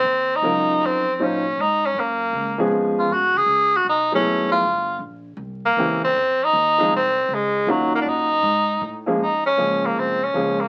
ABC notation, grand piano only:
X:1
M:4/4
L:1/8
Q:"Swing" 1/4=157
K:Abmix
V:1 name="Grand piano"
z2 [G,DEFB]3 z [G,DEFc] z | z4 z [F,A,_CDA]3 | z4 z [G,=A,_C_F_A]3 | z6 [=E,B,CD=G] z |
z3 [F,A,CEA] z4 | [B,DEFG]3 z4 [F,A,B,DA] | [K:Bbm] z2 [F,A,B,DA]3 z [F,A,B,DA] z |]